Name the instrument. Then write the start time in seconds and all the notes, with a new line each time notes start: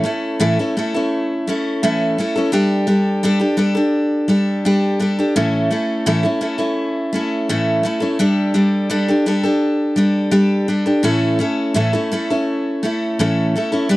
steel-string acoustic guitar
0.04 A3 C#4 E4 A4
0.40 A2 E3 A3 C#4 E4 A4
0.59 A3 C#4 E4 A4
0.77 A3 C#4 E4 A4
0.94 A3 C#4 E4 A4
1.47 A3 C#4 E4 A4
1.83 A2 E3 A3 C#4 E4 A4
2.18 A3 C#4 E4 A4
2.36 A3 C#4 E4 A4
2.52 G3 D4 G4 A4
2.87 G3 D4 G4 A4
3.23 G3 D4 G4 A4
3.40 D4 G4 A4
3.57 G3 D4 G4 A4
3.75 D4 G4 A4
4.28 G3 D4 G4 A4
4.65 G3 D4 G4 A4
5.00 G3 D4 G4 A4
5.19 D4 G4 A4
5.36 A2 E3 A3 C#4 E4 A4
5.71 A3 C#4 E4 A4
6.06 A2 E3 A3 C#4 E4 A4
6.23 A3 C#4 E4 A4
6.41 A3 C#4 E4 A4
6.58 A3 C#4 E4 A4
7.13 A3 C#4 E4 A4
7.49 A2 E3 A3 C#4 E4 A4
7.83 A3 C#4 E4 A4
8.00 A3 C#4 E4 A4
8.19 G3 D4 G4 A4
8.54 G3 D4 G4 A4
8.90 G3 D4 G4 A4
9.08 D4 G4 A4
9.26 G3 D4 G4 A4
9.43 D4 G4 A4
9.96 G3 D4 G4 A4
10.31 G3 D4 G4 A4
10.68 G3 D4 G4 A4
10.86 D4 G4 A4
11.03 A2 E3 A3 C#4 E4 A4
11.39 A3 C#4 E4 A4
11.74 A2 E3 A3 C#4 E4 A4
11.93 A3 C#4 E4 A4
12.12 A3 C#4 E4 A4
12.30 A3 C#4 E4 A4
12.83 A3 C#4 E4 A4
13.19 A2 E3 A3 C#4 E4 A4
13.56 A3 C#4 E4 A4
13.72 A3 C#4 E4 A4
13.89 G3 D4 G4 B4